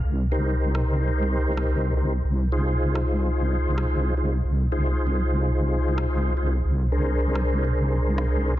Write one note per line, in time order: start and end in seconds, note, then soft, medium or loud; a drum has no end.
0.04 2.22 C2 medium
0.32 1.94 D#4 medium
0.32 1.94 G4 medium
0.32 1.94 A#4 medium
0.32 1.94 C5 loud
0.75 cross-stick soft
1.57 cross-stick soft
1.97 2.13 D#4 medium
1.97 2.13 G4 medium
1.97 2.13 A#4 medium
1.97 2.13 C5 medium
2.25 4.42 C2 medium
2.52 4.14 D#4 medium
2.52 4.14 F4 medium
2.52 4.14 G#4 medium
2.52 4.14 C5 loud
2.95 cross-stick soft
3.78 cross-stick soft
4.17 4.33 D#4 medium
4.17 4.33 F4 medium
4.17 4.33 G#4 medium
4.17 4.33 C5 medium
4.44 6.62 C2 medium
4.72 6.34 D#4 medium
4.72 6.34 F4 medium
4.72 6.34 G#4 medium
4.72 6.34 C5 loud
5.98 cross-stick soft
6.37 6.53 D#4 medium
6.37 6.53 F4 medium
6.37 6.53 G#4 medium
6.37 6.53 C5 medium
6.65 8.59 C2 medium
6.92 8.55 D4 medium
6.92 8.55 G#4 medium
6.92 8.54 A#4 medium
6.92 8.55 C5 loud
7.35 cross-stick soft
8.18 cross-stick medium